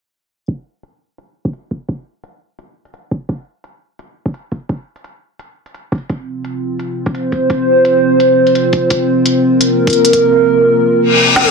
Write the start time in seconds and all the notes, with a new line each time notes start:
0.48 kick, closed hi-hat
0.83 closed hi-hat
1.18 closed hi-hat
1.45 kick, closed hi-hat
1.53 closed hi-hat
1.71 kick, closed hi-hat
1.89 kick, closed hi-hat
2.24 closed hi-hat
2.59 closed hi-hat
2.85 closed hi-hat
2.94 closed hi-hat
3.11 kick, closed hi-hat
3.29 kick, closed hi-hat
3.64 closed hi-hat
3.99 closed hi-hat
4.26 kick, closed hi-hat
4.34 closed hi-hat
4.52 kick, closed hi-hat
4.69 kick, closed hi-hat
4.96 closed hi-hat
5.04 closed hi-hat
5.39 closed hi-hat
5.66 closed hi-hat
5.74 closed hi-hat
5.92 kick, closed hi-hat
5.95 closed hi-hat
5.98 closed hi-hat
6.09 C4, kick, closed hi-hat
6.18 F4
6.45 closed hi-hat
6.79 closed hi-hat
6.94 C5
7.06 kick, closed hi-hat
7.15 closed hi-hat
7.32 kick, closed hi-hat
7.50 kick, closed hi-hat
7.85 closed hi-hat
8.20 closed hi-hat
8.47 closed hi-hat
8.55 closed hi-hat
8.73 kick, closed hi-hat
8.90 kick, closed hi-hat
9.26 closed hi-hat
9.46 A#4
9.61 closed hi-hat
9.87 kick, closed hi-hat
9.90 closed hi-hat
9.93 closed hi-hat
10.05 closed hi-hat
10.13 kick, closed hi-hat
11.01 reverse cymbal
11.36 snare
11.45 high tom